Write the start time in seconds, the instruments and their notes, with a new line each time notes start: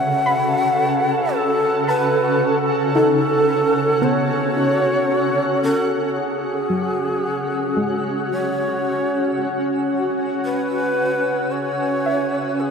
Already playing: ambient pad C#3 C#4 F#4 A4 B4 F#5, shakuhachi F#5
0.26 synth pluck B5
1.36 shakuhachi A4
1.88 shakuhachi B4, synth pluck A5
2.95 synth pluck D#4, shakuhachi A4
4.01 synth pluck B3, shakuhachi C#5
5.63 shakuhachi A4
6.09 shakuhachi A4
6.17 shakuhachi G#4, synth texture E6
6.70 synth pluck F#3
7.77 synth pluck G#3
8.31 shakuhachi C#5
8.48 ambient pad G#5
10.45 shakuhachi B4
11.52 shakuhachi C#5
12.06 synth pluck E5
12.60 shakuhachi G#4